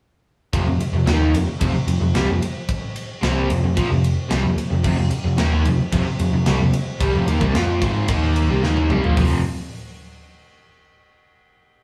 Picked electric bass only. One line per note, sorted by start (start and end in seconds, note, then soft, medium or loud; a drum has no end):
0.54 0.66 F1 medium
0.66 0.79 F1 medium
0.80 muted picked electric bass stroke soft
0.92 1.04 F1 medium
1.05 1.31 D#2 medium
1.32 1.45 F1 medium
1.47 muted picked electric bass stroke soft
1.61 1.73 F1 medium
1.74 muted picked electric bass stroke soft
1.86 1.99 F1 medium
2.00 2.13 F1 medium
2.14 2.27 C2 medium
2.27 2.40 F1 medium
2.41 muted picked electric bass stroke soft
3.22 3.47 C2 loud
3.50 3.62 F1 medium
3.62 3.75 F1 medium
3.77 3.89 A#1 medium
3.89 4.15 F1 medium
4.31 4.43 C2 medium
4.44 4.56 F1 medium
4.57 muted picked electric bass stroke soft
4.71 4.83 F1 medium
4.84 4.97 F1 medium
4.98 5.10 F1 medium
5.11 muted picked electric bass stroke soft
5.24 5.37 F1 medium
5.38 5.63 D#2 loud
5.65 5.78 F1 medium
5.78 muted picked electric bass stroke soft
5.92 6.04 F1 medium
6.05 muted picked electric bass stroke soft
6.19 6.32 F1 medium
6.32 6.45 F1 medium
6.46 6.59 C2 medium
6.59 6.72 F1 medium
6.72 muted picked electric bass stroke soft
7.00 7.12 C2 medium
7.13 7.26 F1 medium
7.26 7.40 D#2 medium
7.41 7.54 C2 medium
7.55 7.80 F2 medium
7.81 8.07 G#1 medium
8.09 8.47 D#2 medium
8.49 8.61 C2 medium
8.62 8.88 D#2 loud
8.89 9.02 C2 medium
9.03 9.16 A#1 loud
9.17 9.42 F1 medium